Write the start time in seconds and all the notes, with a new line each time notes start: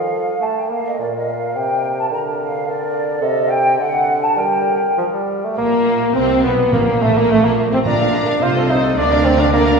Already playing: F3 A4 F5
0.40 A3 A5
0.57 G5
0.70 A#3 F5
0.85 D#5
0.99 A#2 A#4 D5
1.15 D#5
1.28 F5
1.56 C3 G5
1.99 A5
2.10 D3 A#4 A#5
2.39 F5
2.66 A#4 D5
3.21 C3 A4 D#5
3.48 G5
3.78 D3 A4 F#5
4.22 A5
4.36 G3 A#4 G5
4.97 F3
5.13 G3
5.44 A3
5.57 A#1 A#2 A#3
6.14 C2 C3 C4
6.43 B1 B2 B3
6.72 A#1 A#2 A#3
7.01 A1 A2 A3
7.15 A#2 A#3
7.29 A1 A2 A3
7.44 A#1 A#2 A#3
7.71 C3 C4
7.84 A#1 A#2 D4 F4 D5 A#5
7.99 A#4 F5
8.12 F4 D5 A#5
8.27 A#4 F5
8.41 C2 C3 F4 C5
8.54 A4 D#5
8.69 D#4 C5
8.82 A4 D#5
8.97 D2 D3 D4 A#4 D5
9.11 A#4 D5 F5
9.25 C4 A#4 D5
9.38 D4 A#4 D5 F5
9.52 A#3 A#4 D5
9.65 A#4 D5 F5